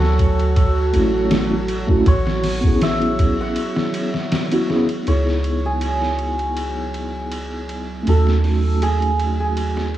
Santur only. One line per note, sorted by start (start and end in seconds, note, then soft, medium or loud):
0.00 2.59 A4 loud
0.00 1.64 C#5 loud
2.08 4.63 C#5 loud
2.83 5.13 E5 loud
3.41 5.55 F#5 medium
5.08 7.63 C#5 medium
5.66 8.15 G#4 medium
8.09 8.88 A4 medium
8.82 9.40 G#4 medium
9.40 9.98 G#4 medium